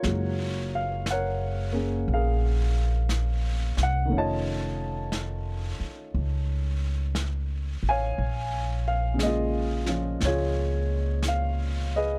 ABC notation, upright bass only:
X:1
M:4/4
L:1/8
Q:"Swing" 1/4=59
K:F#
V:1 name="Upright bass" clef=bass
F,,,4 A,,,3 ^B,,, | =F,,,3 z C,,3 =A,,, | A,,,4 C,,4 |]